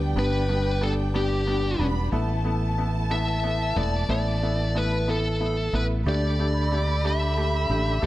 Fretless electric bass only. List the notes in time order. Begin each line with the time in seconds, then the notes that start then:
Already playing: D2
0.15 G1
1.79 E1
2.12 A1
3.76 E1
4.09 A1
5.73 A1
6.06 D2
7.69 A1
8.03 D2